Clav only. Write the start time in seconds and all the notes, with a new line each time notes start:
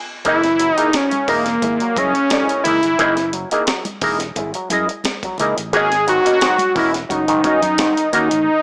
0.25 A#3 D#4 E4 G#4
0.59 F#3
0.77 A#3 D#4 E4 G#4
0.95 F#3
1.28 A#3 D#4 E4 G#4
1.47 E4 G#4
1.63 E4 G#4
1.82 F#3
1.97 E4 G#4
2.31 F#3
2.65 A#3 D#4 E4 G#4
2.84 E4 G#4
2.98 A#3 D#4 E4 G#4
3.33 F#3
3.52 A#3 D#4 E4 G#4
3.67 F#3
4.02 A#3 D#4 E4 G#4
4.21 E4 G#4
4.37 E4 G#4
4.55 F#3
4.70 E4 G#4
5.05 E4 G#4
5.24 F#3
5.40 A#3 D#4 E4 G#4
5.73 A#3 C#4 F#4
6.07 G#2 D#3
6.25 A#3 C#4 F#4
6.42 G#2 D#3
6.75 A#3 C#4 F#4
6.93 C#4 F#4
7.09 C#4 F#4
7.28 G#2 D#3
7.44 C#4 F#4
7.79 G#2 D#3
8.13 A#3 C#4 F#4
8.31 C#4 F#4